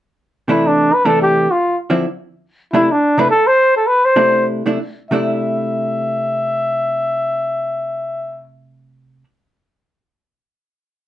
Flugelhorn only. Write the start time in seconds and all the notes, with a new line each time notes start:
0.50 E4
0.67 D4
0.94 B4
1.06 A4
1.22 G4
1.51 F4
2.73 E4
2.92 D4
3.19 B4
3.30 A4
3.47 C5
3.77 A4
3.87 B4
4.05 C5
5.10 E5